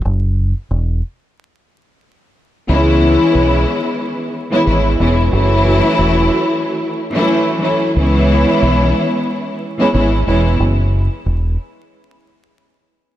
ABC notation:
X:1
M:4/4
L:1/16
Q:"Swing 16ths" 1/4=91
K:C#m
V:1 name="String section"
z16 | [E,G,B,CE]8- [E,G,B,CE]2 z [E,G,B,CE] [E,G,B,CE]2 [E,G,B,CE]2 | [E,F,A,CE]8- [E,F,A,CE]2 z [E,F,A,CE]3 [E,F,A,CE]2 | [E,G,B,CE]8- [E,G,B,CE]2 z [E,G,B,CE] [E,G,B,CE]2 [E,G,B,CE]2 |
z16 |]
V:2 name="Fingered electric bass" clef=bass
F,,,3 z E,,,2 z8 z2 | C,,3 z B,,,2 z6 G,,,2 E,,,2 | F,,,3 z E,,,2 z8 z2 | C,,3 z B,,,2 z6 G,,,2 E,,,2 |
F,,,3 z E,,,2 z8 z2 |]